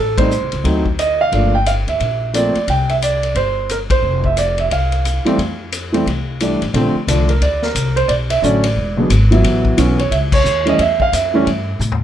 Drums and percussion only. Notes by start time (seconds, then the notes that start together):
0.18 kick, ride
0.31 hi-hat pedal
0.52 ride
0.64 kick, ride
0.86 kick
0.99 hi-hat pedal, ride
1.32 kick, ride
1.66 hi-hat pedal, ride
1.88 ride
2.00 kick, ride
2.34 hi-hat pedal, ride
2.55 ride
2.68 kick, ride
2.89 ride
3.02 hi-hat pedal, ride
3.23 ride
3.35 kick, ride
3.69 hi-hat pedal, ride
3.90 kick, ride
4.24 kick
4.37 hi-hat pedal, ride
4.58 ride
4.70 kick, ride
4.92 ride
5.05 hi-hat pedal, ride
5.26 ride
5.38 kick, ride
5.72 hi-hat pedal, ride
5.94 ride
6.06 kick, ride
6.40 hi-hat pedal, ride
6.62 ride
6.74 kick, ride
7.08 kick, hi-hat pedal, ride
7.29 ride
7.41 kick, ride
7.62 snare
7.75 kick, hi-hat pedal, ride
7.97 ride
8.09 kick, ride
8.30 ride
8.43 kick, hi-hat pedal
8.64 ride
8.76 kick
9.10 kick, hi-hat pedal, ride
9.32 ride
9.44 kick, ride
9.65 kick
9.78 kick, hi-hat pedal, ride
9.99 ride
10.11 kick, ride
10.32 kick, crash
10.45 hi-hat pedal
10.67 ride
10.79 kick, ride
11.00 kick
11.13 kick, hi-hat pedal, ride
11.46 kick, ride
11.80 hi-hat pedal, mid tom
11.92 floor tom